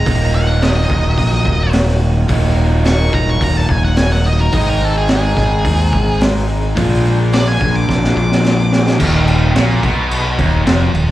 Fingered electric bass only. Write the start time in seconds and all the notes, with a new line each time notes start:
0.07 D#1
0.90 D#1
1.18 A#1
1.46 D#1
2.29 D#1
3.13 D#1
3.41 D#1
3.69 D#1
4.53 G#1
5.37 G#1
5.65 D#2
5.93 G#1
6.77 A#1
7.61 A#1
7.89 A#1
8.17 A#1
9.00 D#1
9.56 A#1
9.83 B1
10.39 D#1
10.66 F1
10.94 D#1